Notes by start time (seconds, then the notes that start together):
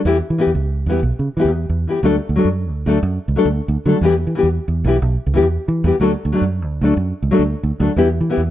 0.05 E2 E3 E4 G4, muted nylon-string guitar stroke
0.30 E3
0.38 E3 B3 E4 G4
0.47 E2
0.55 C#2
0.86 E2 E3 B3 E4
0.91 G4
1.03 B1
1.19 C#3
1.37 E3 B3 E4
1.41 E2 G4
1.69 E2
1.87 E3 B3 E4 G4
2.03 D2 F#3 A3 D4 A4
2.29 D2
2.36 F#3 A3 D4 A4
2.45 F#2
2.70 D2
2.86 D2 F#3 A3 D4 A4
3.03 F#2
3.28 C#2
3.36 F#3 A3 D4 A4
3.45 D2
3.68 D2
3.85 D3 F#3 A3 D4 A4
4.01 E2 E3 B3 E4 G4
4.27 E3
4.35 E3 B3 E4 G4
4.43 E2
4.68 E2
4.84 B1 E3 B3 E4 G4
5.02 B1
5.26 C#2
5.34 E3 B3 E4 G4
5.42 E2
5.68 E3
5.84 E2 E3 B3 E4 G4
6.00 D2 F#3 A3 D4 A4
6.25 D2
6.32 F#3 A3 D4, muted nylon-string guitar stroke
6.41 F#2
6.65 D2
6.81 D2 F#3 A3 D4 A4
6.97 F#2
7.22 C#2
7.31 F#3 A3 D4 A4
7.39 D2
7.63 D2
7.79 D2 F#3 A3 D4 A4
7.96 E2 E3 B3 E4 G4
8.21 E3
8.29 E3 B3 E4 G4
8.38 E2